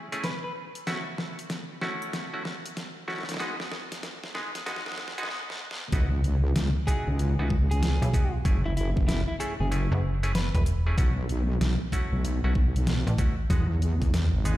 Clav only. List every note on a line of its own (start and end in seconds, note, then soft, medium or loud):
0.12 0.30 A3 medium
0.12 0.30 C#4 medium
0.12 0.30 E4 medium
0.12 0.30 G#4 loud
0.87 1.03 A3 loud
0.87 1.04 C#4 medium
0.87 1.03 E4 medium
0.87 1.03 F#4 loud
1.82 2.29 A3 loud
1.82 2.29 C#4 medium
1.82 2.29 E4 medium
1.82 2.29 F#4 loud
2.34 2.43 A3 medium
2.34 2.43 C#4 medium
2.34 2.43 E4 medium
2.34 2.43 F#4 medium
3.08 3.24 A3 medium
3.08 3.24 C#4 medium
3.08 3.24 E4 medium
3.08 3.24 F#4 medium
3.40 3.56 G#3 medium
3.40 3.56 B3 medium
3.40 3.56 D#4 medium
3.40 3.56 F#4 medium
4.35 4.51 G#3 medium
4.35 4.51 B3 medium
4.35 4.51 D#4 medium
4.35 4.51 G#4 medium
4.66 5.13 G#3 medium
4.66 5.13 B3 medium
4.66 5.13 D#4 medium
4.66 5.13 F#4 medium
5.18 5.27 G#3 medium
5.18 5.27 B3 medium
5.18 5.27 D#4 medium
5.18 5.27 F#4 loud
5.93 6.09 B3 loud
5.93 6.09 D#4 medium
5.93 6.09 E4 medium
5.93 6.09 F#4 loud
6.87 7.34 B3 loud
6.87 7.34 D#4 medium
6.87 7.34 E4 medium
6.87 7.34 F#4 loud
7.39 7.48 B3 medium
7.39 7.48 D#4 medium
7.39 7.48 E4 medium
7.39 7.48 F#4 medium
8.14 8.30 B3 medium
8.14 8.30 D#4 medium
8.14 8.30 E4 medium
8.14 8.30 F#4 medium
8.45 8.61 A3 medium
8.45 8.61 C#4 medium
8.45 8.61 E4 medium
8.45 8.61 G#4 loud
9.40 9.56 A3 medium
9.40 9.56 C#4 medium
9.40 9.56 E4 medium
9.40 9.56 A4 medium
9.71 10.18 A3 medium
9.71 10.18 C#4 medium
9.71 10.18 E4 medium
9.71 10.18 G#4 medium
10.23 10.32 A3 medium
10.23 10.32 C#4 medium
10.23 10.32 E4 medium
10.23 10.32 G#4 loud
10.87 10.96 A3 medium
10.87 10.96 C#4 medium
10.87 10.96 E4 medium
10.87 10.96 G#4 medium
10.98 11.14 A3 loud
10.98 11.14 C#4 medium
10.98 11.14 E4 medium
10.98 11.14 F#4 loud
11.93 12.39 A3 loud
11.93 12.39 C#4 medium
11.93 12.39 E4 medium
11.93 12.39 F#4 loud
12.44 12.53 A3 medium
12.44 12.53 C#4 medium
12.44 12.53 E4 medium
12.44 12.53 F#4 medium
13.18 13.35 A3 medium
13.18 13.35 C#4 medium
13.18 13.35 E4 medium
13.18 13.35 F#4 medium
13.50 13.67 G#3 medium
13.50 13.67 B3 medium
13.50 13.67 D#4 medium
13.50 13.67 F#4 loud
14.45 14.57 G#3 medium
14.45 14.57 B3 medium
14.45 14.57 D#4 medium
14.45 14.57 G#4 medium